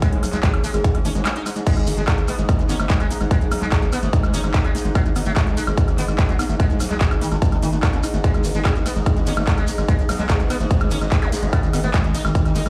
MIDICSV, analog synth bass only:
0, 0, Header, 1, 2, 480
1, 0, Start_track
1, 0, Key_signature, 5, "minor"
1, 0, Tempo, 410959
1, 26, Time_signature, 4, 2, 24, 8
1, 14822, End_track
2, 0, Start_track
2, 0, Title_t, "Analog synth bass"
2, 0, Program_c, 0, 38
2, 146, Note_on_c, 0, 35, 79
2, 214, Note_off_c, 0, 35, 0
2, 266, Note_on_c, 0, 35, 98
2, 334, Note_off_c, 0, 35, 0
2, 386, Note_on_c, 0, 35, 83
2, 454, Note_off_c, 0, 35, 0
2, 626, Note_on_c, 0, 32, 77
2, 694, Note_off_c, 0, 32, 0
2, 866, Note_on_c, 0, 32, 81
2, 934, Note_off_c, 0, 32, 0
2, 1106, Note_on_c, 0, 32, 77
2, 1174, Note_off_c, 0, 32, 0
2, 1226, Note_on_c, 0, 32, 96
2, 1294, Note_off_c, 0, 32, 0
2, 1346, Note_on_c, 0, 32, 85
2, 1414, Note_off_c, 0, 32, 0
2, 2066, Note_on_c, 0, 32, 77
2, 2134, Note_off_c, 0, 32, 0
2, 2186, Note_on_c, 0, 32, 92
2, 2254, Note_off_c, 0, 32, 0
2, 2306, Note_on_c, 0, 32, 84
2, 2374, Note_off_c, 0, 32, 0
2, 2546, Note_on_c, 0, 32, 78
2, 2614, Note_off_c, 0, 32, 0
2, 2786, Note_on_c, 0, 32, 85
2, 2854, Note_off_c, 0, 32, 0
2, 3026, Note_on_c, 0, 32, 78
2, 3094, Note_off_c, 0, 32, 0
2, 3146, Note_on_c, 0, 32, 96
2, 3214, Note_off_c, 0, 32, 0
2, 3266, Note_on_c, 0, 32, 85
2, 3334, Note_off_c, 0, 32, 0
2, 3506, Note_on_c, 0, 32, 82
2, 3574, Note_off_c, 0, 32, 0
2, 3745, Note_on_c, 0, 32, 84
2, 3814, Note_off_c, 0, 32, 0
2, 3985, Note_on_c, 0, 35, 81
2, 4054, Note_off_c, 0, 35, 0
2, 4106, Note_on_c, 0, 35, 96
2, 4174, Note_off_c, 0, 35, 0
2, 4226, Note_on_c, 0, 35, 85
2, 4294, Note_off_c, 0, 35, 0
2, 4465, Note_on_c, 0, 32, 76
2, 4534, Note_off_c, 0, 32, 0
2, 4705, Note_on_c, 0, 32, 82
2, 4774, Note_off_c, 0, 32, 0
2, 4945, Note_on_c, 0, 32, 75
2, 5014, Note_off_c, 0, 32, 0
2, 5065, Note_on_c, 0, 32, 94
2, 5134, Note_off_c, 0, 32, 0
2, 5185, Note_on_c, 0, 32, 88
2, 5254, Note_off_c, 0, 32, 0
2, 5425, Note_on_c, 0, 32, 78
2, 5494, Note_off_c, 0, 32, 0
2, 5665, Note_on_c, 0, 32, 85
2, 5734, Note_off_c, 0, 32, 0
2, 5905, Note_on_c, 0, 32, 82
2, 5974, Note_off_c, 0, 32, 0
2, 6025, Note_on_c, 0, 32, 96
2, 6094, Note_off_c, 0, 32, 0
2, 6145, Note_on_c, 0, 32, 80
2, 6214, Note_off_c, 0, 32, 0
2, 6385, Note_on_c, 0, 32, 82
2, 6454, Note_off_c, 0, 32, 0
2, 6625, Note_on_c, 0, 32, 81
2, 6694, Note_off_c, 0, 32, 0
2, 6865, Note_on_c, 0, 32, 81
2, 6934, Note_off_c, 0, 32, 0
2, 6985, Note_on_c, 0, 32, 97
2, 7054, Note_off_c, 0, 32, 0
2, 7105, Note_on_c, 0, 32, 87
2, 7174, Note_off_c, 0, 32, 0
2, 7345, Note_on_c, 0, 32, 78
2, 7414, Note_off_c, 0, 32, 0
2, 7585, Note_on_c, 0, 32, 81
2, 7654, Note_off_c, 0, 32, 0
2, 7826, Note_on_c, 0, 35, 80
2, 7894, Note_off_c, 0, 35, 0
2, 7946, Note_on_c, 0, 35, 98
2, 8014, Note_off_c, 0, 35, 0
2, 8066, Note_on_c, 0, 35, 87
2, 8134, Note_off_c, 0, 35, 0
2, 8305, Note_on_c, 0, 32, 77
2, 8374, Note_off_c, 0, 32, 0
2, 8546, Note_on_c, 0, 32, 83
2, 8614, Note_off_c, 0, 32, 0
2, 8786, Note_on_c, 0, 32, 78
2, 8854, Note_off_c, 0, 32, 0
2, 8906, Note_on_c, 0, 32, 94
2, 8974, Note_off_c, 0, 32, 0
2, 9025, Note_on_c, 0, 32, 86
2, 9094, Note_off_c, 0, 32, 0
2, 9265, Note_on_c, 0, 32, 78
2, 9334, Note_off_c, 0, 32, 0
2, 9505, Note_on_c, 0, 32, 83
2, 9574, Note_off_c, 0, 32, 0
2, 9745, Note_on_c, 0, 32, 84
2, 9814, Note_off_c, 0, 32, 0
2, 9865, Note_on_c, 0, 32, 92
2, 9934, Note_off_c, 0, 32, 0
2, 9985, Note_on_c, 0, 32, 84
2, 10054, Note_off_c, 0, 32, 0
2, 10225, Note_on_c, 0, 32, 79
2, 10294, Note_off_c, 0, 32, 0
2, 10465, Note_on_c, 0, 32, 85
2, 10534, Note_off_c, 0, 32, 0
2, 10706, Note_on_c, 0, 32, 79
2, 10774, Note_off_c, 0, 32, 0
2, 10826, Note_on_c, 0, 32, 99
2, 10894, Note_off_c, 0, 32, 0
2, 10946, Note_on_c, 0, 32, 84
2, 11014, Note_off_c, 0, 32, 0
2, 11186, Note_on_c, 0, 32, 81
2, 11254, Note_off_c, 0, 32, 0
2, 11426, Note_on_c, 0, 32, 85
2, 11494, Note_off_c, 0, 32, 0
2, 11666, Note_on_c, 0, 35, 80
2, 11734, Note_off_c, 0, 35, 0
2, 11786, Note_on_c, 0, 35, 98
2, 11854, Note_off_c, 0, 35, 0
2, 11906, Note_on_c, 0, 35, 84
2, 11974, Note_off_c, 0, 35, 0
2, 12146, Note_on_c, 0, 32, 81
2, 12214, Note_off_c, 0, 32, 0
2, 12386, Note_on_c, 0, 32, 82
2, 12454, Note_off_c, 0, 32, 0
2, 12626, Note_on_c, 0, 32, 77
2, 12694, Note_off_c, 0, 32, 0
2, 12746, Note_on_c, 0, 32, 95
2, 12814, Note_off_c, 0, 32, 0
2, 12866, Note_on_c, 0, 32, 84
2, 12934, Note_off_c, 0, 32, 0
2, 13106, Note_on_c, 0, 32, 79
2, 13174, Note_off_c, 0, 32, 0
2, 13346, Note_on_c, 0, 32, 80
2, 13414, Note_off_c, 0, 32, 0
2, 13586, Note_on_c, 0, 32, 82
2, 13654, Note_off_c, 0, 32, 0
2, 13706, Note_on_c, 0, 32, 100
2, 13774, Note_off_c, 0, 32, 0
2, 13826, Note_on_c, 0, 32, 84
2, 13894, Note_off_c, 0, 32, 0
2, 14066, Note_on_c, 0, 32, 80
2, 14134, Note_off_c, 0, 32, 0
2, 14306, Note_on_c, 0, 32, 83
2, 14374, Note_off_c, 0, 32, 0
2, 14546, Note_on_c, 0, 32, 77
2, 14614, Note_off_c, 0, 32, 0
2, 14666, Note_on_c, 0, 32, 95
2, 14734, Note_off_c, 0, 32, 0
2, 14786, Note_on_c, 0, 32, 85
2, 14822, Note_off_c, 0, 32, 0
2, 14822, End_track
0, 0, End_of_file